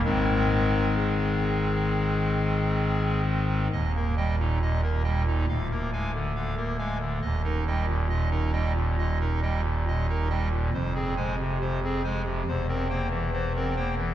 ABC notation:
X:1
M:4/4
L:1/16
Q:1/4=68
K:Ab
V:1 name="Pipe organ"
B4 A8- A2 z2 | [K:Eb] [E,,e] [B,B] [G,eg] [B,,E] [B,,e] [B,B] [G,eg] [B,,E] [D,,f] [B,B] [A,fa] D, [D,f] [B,B] [A,fa] D, | [E,,e] [EB] [G,eg] B,, [B,,e] [EB] [G,eg] B,, [B,,e] [EB] [G,eg] B,, [B,,e] [EB] [G,eg] B,, | [F,,c] [CA] [A,ca] C, [C,c] [CA] [A,ca] C, [=E,,c] [CB] [B,cg] =E, [E,c] [CB] [B,cg] E, |]
V:2 name="Pipe organ" clef=bass
[A,,,A,,E,A,C]16 | [K:Eb] E,,,8 D,,,8 | E,,,16 | F,,,8 =E,,,8 |]